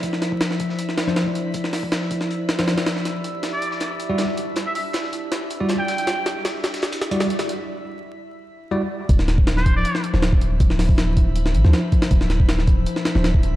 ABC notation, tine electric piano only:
X:1
M:4/4
L:1/16
Q:1/4=159
K:Dm
V:1 name="Tine electric piano"
z8 z3 [F,DEc] z4 | z8 z3 [F,DEc] z4 | z8 z3 [G,E^Fd] z4 | z8 z3 [G,E^Fd] z4 |
z8 z3 [G,E^Fd] z4 | z12 [G,E^Fd] z3 | z8 z3 [F,DEc] z4 | z8 z3 [F,DEc] z4 |
z8 z3 [F,DEc] z4 |]